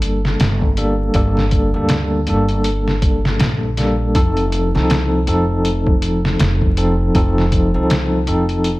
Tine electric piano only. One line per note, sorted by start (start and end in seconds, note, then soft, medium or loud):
0.00 0.78 G3 medium
0.00 0.78 A#3 medium
0.00 0.78 D4 medium
0.00 0.78 A4 loud
0.78 1.02 G3 medium
0.78 1.02 A#3 medium
0.78 1.02 D4 medium
0.78 1.02 A4 medium
1.15 1.69 G3 medium
1.15 1.69 A#3 medium
1.15 1.69 D4 medium
1.15 1.70 A4 medium
1.75 2.24 G3 medium
1.75 2.24 A#3 medium
1.75 2.24 D4 medium
1.75 2.25 A4 medium
2.28 3.74 G3 medium
2.28 3.75 A#3 medium
2.28 3.75 D4 medium
2.28 3.75 A4 medium
3.78 4.02 G3 medium
3.78 4.02 A#3 medium
3.78 4.02 D4 medium
3.78 4.02 A4 medium
4.15 4.69 F3 medium
4.15 4.69 C4 medium
4.15 4.69 D#4 medium
4.15 4.70 A4 medium
4.75 5.24 F3 medium
4.75 5.24 C4 medium
4.75 5.24 D#4 medium
4.75 5.25 A4 medium
5.27 6.74 F3 medium
5.27 6.74 C4 medium
5.27 6.75 D#4 medium
5.27 6.75 A4 medium
6.77 7.02 F3 medium
6.77 7.02 C4 medium
6.77 7.02 D#4 medium
6.77 7.02 A4 loud
7.15 7.69 F3 medium
7.15 7.69 C4 medium
7.15 7.69 D#4 medium
7.15 7.70 A4 loud
7.75 8.24 F3 medium
7.75 8.24 C4 medium
7.75 8.24 D#4 medium
7.75 8.24 A4 medium
8.28 8.80 F3 medium
8.28 8.80 C4 medium
8.28 8.80 D#4 medium
8.28 8.80 A4 loud